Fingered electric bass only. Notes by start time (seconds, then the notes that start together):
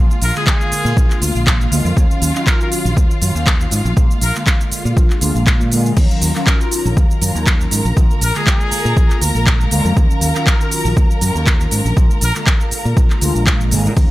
0.22 A#1
0.72 muted fingered electric bass stroke
0.85 A#2
0.97 A#1
1.22 D2
1.35 A#1
1.72 D2
1.85 F2
1.97 D#2
2.22 D#2
2.85 A#1
2.97 D#2
3.22 F#2
3.35 D#2
3.72 G#2
3.85 A#1
4.22 A#1
4.72 muted fingered electric bass stroke
4.85 A#2
4.97 A#1
5.22 D2
5.35 A#1
5.60 A#2
5.97 D#2
6.22 D#2
6.85 A#1
6.97 D#2
7.22 F#2
7.35 D#2
7.72 G#2
7.85 A#1
7.97 A#1
8.21 A#1
8.72 muted fingered electric bass stroke
8.85 A#2
8.97 A#1
9.21 D2
9.35 A#1
9.71 D2
9.85 F2
9.97 D#2
10.21 D#2
10.85 A#1
10.97 D#2
11.22 F#2
11.35 D#2
11.72 G#2
11.85 A#1
11.97 A#1
12.22 A#1
12.72 muted fingered electric bass stroke
12.85 A#2
12.97 A#1
13.22 D2
13.35 A#1
13.72 G#1
13.85 A#2
13.97 D#2